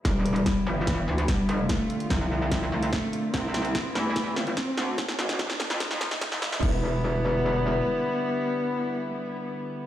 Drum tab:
CC |----------------|----------------|----------------|----------------|
HH |x-xxx---x--xx-x-|x-xxx---x--xx-x-|x-xxx---x--xx-x-|x-xxx---x--xx-x-|
SD |o---o---o---o---|o---o---o---o---|o-o-o-o-o-o-o-o-|oooooooooooooooo|
BD |o---o---o---o---|o---o---o---o---|o---o---o---o---|o---o---o---o---|

CC |x---------------|----------------|
HH |----------------|----------------|
SD |----------------|----------------|
BD |o---------------|----------------|